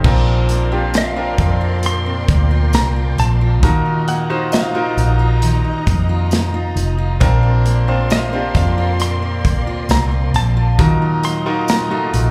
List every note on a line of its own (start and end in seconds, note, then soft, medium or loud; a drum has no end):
0.00 0.27 C4 medium
0.00 0.25 D#4 soft
0.00 0.14 G4 medium
0.00 0.25 G4 medium
0.04 1.35 A#1 medium
0.04 1.82 A#2 medium
0.04 1.35 A#2 medium
0.04 1.35 F3 medium
0.04 0.68 C4 medium
0.04 0.69 D4 medium
0.04 0.69 F4 medium
0.04 3.59 A#4 medium
0.04 0.69 A#4 medium
0.04 3.59 D5 medium
0.04 1.82 F5 medium
0.04 3.59 C6 medium
0.04 kick loud
0.04 crash medium
0.27 0.93 C4 soft
0.49 2.28 A#3 medium
0.49 closed hi-hat medium
0.72 1.14 C4 medium
0.72 1.14 D4 medium
0.72 1.16 F4 medium
0.72 1.15 F4 medium
0.72 1.15 G4 medium
0.94 1.38 C4 medium
0.94 snare loud
0.94 closed hi-hat medium
0.94 tambourine medium
0.98 1.82 F5 medium
1.16 2.87 C4 medium
1.16 2.87 D4 medium
1.16 1.61 F4 medium
1.16 2.87 F4 medium
1.16 2.87 A#4 medium
1.38 2.24 F2 medium
1.38 2.05 C4 medium
1.38 kick medium
1.38 closed hi-hat medium
1.61 2.50 F4 medium
1.83 3.72 A#2 medium
1.83 3.61 G5 medium
1.83 2.74 C6 loud
1.83 closed hi-hat medium
2.06 2.72 C4 medium
2.28 2.70 D2 medium
2.28 4.08 A#3 medium
2.28 kick medium
2.28 closed hi-hat medium
2.51 2.96 F4 medium
2.73 3.15 C2 medium
2.73 3.17 C4 medium
2.73 2.87 A#5 medium
2.73 snare loud
2.73 closed hi-hat loud
2.73 tambourine medium
2.96 3.41 F4 medium
3.18 3.63 A#1 medium
3.18 3.72 C4 medium
3.18 3.61 A5 medium
3.18 closed hi-hat medium
3.41 3.89 F4 medium
3.63 4.93 D#2 loud
3.63 4.93 A#2 medium
3.63 5.41 D#3 medium
3.63 4.27 D#4 medium
3.63 7.18 D#4 medium
3.63 4.27 F4 medium
3.63 4.27 F#4 medium
3.63 4.27 A#4 medium
3.63 7.18 D#5 medium
3.63 7.17 A#5 medium
3.63 4.09 A#5 medium
3.63 kick loud
3.63 closed hi-hat medium
3.86 4.51 D#4 medium
4.08 5.86 A#3 medium
4.08 4.50 F#5 medium
4.08 closed hi-hat medium
4.29 4.72 D#4 medium
4.29 4.72 F4 medium
4.29 4.74 F4 medium
4.29 4.72 F#4 medium
4.29 4.73 C5 medium
4.52 4.96 D#4 medium
4.52 5.83 F5 medium
4.52 snare loud
4.52 closed hi-hat medium
4.52 tambourine medium
4.74 6.45 D#4 medium
4.74 6.45 F4 medium
4.74 5.19 F4 medium
4.74 6.45 F#4 medium
4.74 6.45 A#4 medium
4.97 5.60 A#1 medium
4.97 5.63 D#4 medium
4.97 closed hi-hat medium
5.19 6.09 F4 medium
5.42 7.30 D#3 medium
5.42 closed hi-hat medium
5.64 6.30 D#4 medium
5.86 6.72 F2 medium
5.86 7.46 A#3 medium
5.86 kick medium
5.86 closed hi-hat medium
6.09 6.54 F4 medium
6.31 6.75 D#4 medium
6.31 snare loud
6.31 closed hi-hat medium
6.31 tambourine medium
6.54 6.98 F4 medium
6.76 7.18 F1 medium
6.76 7.30 D#4 medium
6.76 closed hi-hat medium
6.98 7.88 F4 medium
7.20 8.51 A#1 loud
7.20 8.99 A#2 medium
7.20 7.84 C4 medium
7.20 7.85 D4 medium
7.20 7.85 F4 medium
7.20 10.76 A#4 medium
7.20 7.85 A#4 loud
7.20 10.76 D5 medium
7.20 10.75 C6 medium
7.20 kick loud
7.20 closed hi-hat medium
7.43 8.10 C4 medium
7.66 9.44 A#3 medium
7.66 closed hi-hat medium
7.88 8.31 C4 medium
7.88 8.31 D4 medium
7.88 8.32 F4 medium
7.88 8.31 F4 medium
7.88 8.31 C5 medium
8.10 8.54 C4 medium
8.10 8.56 F5 medium
8.10 snare loud
8.10 closed hi-hat medium
8.10 tambourine medium
8.33 10.03 C4 medium
8.33 10.03 D4 medium
8.33 8.77 F4 medium
8.33 10.03 F4 medium
8.33 10.04 G4 medium
8.55 9.45 F2 medium
8.55 9.21 C4 medium
8.55 8.98 F5 medium
8.55 kick medium
8.55 closed hi-hat medium
8.78 9.67 F4 medium
9.00 10.88 A#2 medium
9.00 9.91 C6 loud
9.00 closed hi-hat medium
9.22 9.89 C4 medium
9.45 9.87 D2 loud
9.45 10.88 A#3 medium
9.45 kick medium
9.45 closed hi-hat medium
9.67 10.11 F4 medium
9.89 10.31 C2 loud
9.89 10.33 C4 medium
9.89 10.03 A#5 medium
9.89 snare loud
9.89 closed hi-hat medium
9.89 tambourine medium
10.11 10.56 F4 medium
10.34 10.76 A#1 loud
10.34 10.88 C4 medium
10.34 10.77 A5 medium
10.34 closed hi-hat medium
10.57 11.05 F4 medium
10.78 12.10 D#2 loud
10.78 12.10 A#2 medium
10.78 12.31 D#3 medium
10.78 12.31 F#3 medium
10.78 11.43 D#4 medium
10.78 11.43 F4 medium
10.78 11.43 F#4 medium
10.78 11.43 A#4 medium
10.78 12.31 D#5 medium
10.78 12.31 A#5 medium
10.78 11.24 A#5 medium
10.78 kick loud
10.78 closed hi-hat medium
11.02 11.67 D#4 medium
11.23 12.31 A#3 medium
11.23 11.69 C6 loud
11.23 closed hi-hat medium
11.46 11.89 D#4 medium
11.46 11.89 F4 medium
11.46 11.91 F4 medium
11.46 11.89 F#4 medium
11.46 11.89 A#4 medium
11.68 12.12 D#4 medium
11.68 12.31 A#5 medium
11.68 snare loud
11.68 closed hi-hat medium
11.68 tambourine loud
11.90 12.31 A3 medium
11.90 12.31 D#4 medium
11.90 12.31 F4 medium
11.90 12.31 F#4 medium
12.14 12.31 A#1 medium
12.14 12.31 D#4 medium
12.14 closed hi-hat medium